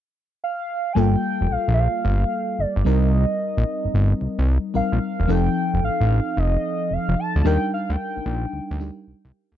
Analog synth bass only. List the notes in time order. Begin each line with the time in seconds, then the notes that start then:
0.96 G1
1.41 F1
1.51 A#1
1.68 A#1
2.05 G1
2.59 G1
2.76 G1
2.86 C2
3.57 A#1
3.85 G1
3.94 G1
4.21 C2
4.39 C2
4.75 A#1
4.92 A#1
5.20 E1
5.29 F1
5.74 F1
5.83 A1
6.01 A1
6.37 F1
6.91 F1
7.09 F1
7.36 D2
7.45 D#2
7.90 D2
8.17 A#1
8.26 A#1
8.53 D2
8.71 D2
9.07 C2
9.25 C2
9.52 D2